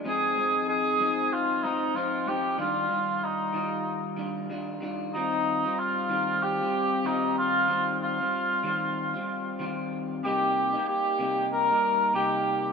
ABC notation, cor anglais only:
X:1
M:4/4
L:1/8
Q:"Swing 16ths" 1/4=94
K:Eb
V:1 name="Cor anglais"
A2 A2 F E F G | F2 E3 z3 | E2 F2 G2 E F- | F F6 z |
G2 G2 B2 G2 |]